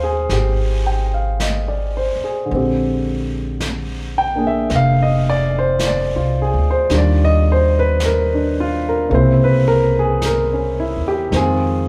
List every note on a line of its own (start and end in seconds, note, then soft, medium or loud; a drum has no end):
0.00 0.25 D#2 medium
0.00 2.48 F3 soft
0.00 2.49 G#3 soft
0.00 2.52 D#4 soft
0.00 0.31 G4 medium
0.00 0.25 G#4 medium
0.00 1.97 C5 medium
0.00 1.14 F5 medium
0.00 2.52 G#5 medium
0.00 2.52 A#5 medium
0.29 2.11 G#1 medium
0.29 2.55 G4 medium
0.29 brush sweep soft
0.29 snare soft
0.86 1.19 G5 soft
1.14 1.52 F5 soft
1.40 1.93 D#5 soft
1.40 brush sweep soft
1.40 snare soft
1.40 hi-hat pedal soft
1.68 2.16 D5 soft
1.97 2.30 C5 medium
2.15 muted upright bass stroke soft
2.24 2.62 G#4 soft
2.46 6.88 D3 soft
2.50 4.67 A#1 medium
2.50 6.90 G#3 soft
2.50 6.92 C4 soft
2.50 brush sweep soft
2.56 6.93 G4 soft
3.60 brush sweep soft
3.60 snare soft
3.60 hi-hat pedal medium
4.18 4.43 G5 medium
4.35 6.90 A#3 soft
4.35 6.89 D4 soft
4.35 6.40 G#4 medium
4.47 4.67 E5 medium
4.70 6.13 F1 medium
4.70 brush sweep soft
4.70 snare soft
4.76 5.09 F5 medium
5.02 5.41 D#5 medium
5.30 5.54 D5 medium
5.59 5.77 C5 medium
5.79 brush sweep soft
5.79 snare soft
5.79 hi-hat pedal soft
5.87 6.20 D5 medium
6.16 6.51 C2 medium
6.16 6.53 F4 medium
6.42 6.65 G#4 medium
6.54 6.88 D2 medium
6.71 6.88 C5 medium
6.90 9.07 D#2 medium
6.90 9.11 D#3 medium
6.90 9.11 G3 soft
6.90 8.33 D4 soft
6.90 8.59 F4 medium
6.90 brush sweep soft
6.90 snare soft
6.98 7.30 D5 medium
7.25 7.63 D#5 medium
7.52 7.75 C5 medium
7.79 7.98 B4 medium
8.00 brush sweep soft
8.00 snare soft
8.00 hi-hat pedal medium
8.06 8.40 A#4 medium
8.34 8.73 D4 soft
8.60 8.85 F4 medium
8.89 9.08 A#4 medium
9.09 10.93 C2 medium
9.09 11.32 C#3 medium
9.09 11.32 A#3 soft
9.09 11.33 C4 medium
9.09 brush sweep soft
9.14 10.78 E4 medium
9.14 9.49 C5 medium
9.44 9.83 B4 medium
9.68 9.94 A#4 medium
9.99 10.18 G#4 medium
10.22 brush sweep soft
10.22 snare soft
10.22 hi-hat pedal medium
10.26 10.61 A#4 medium
10.53 10.93 C#4 soft
10.80 11.05 E4 medium
10.96 11.29 E2 medium
11.08 11.28 G4 medium
11.30 11.88 F2 medium
11.30 11.88 D#3 medium
11.30 11.88 G#3 medium
11.30 11.88 C4 soft
11.30 brush sweep soft
11.30 snare soft
11.36 11.88 F4 medium
11.36 11.80 G#4 medium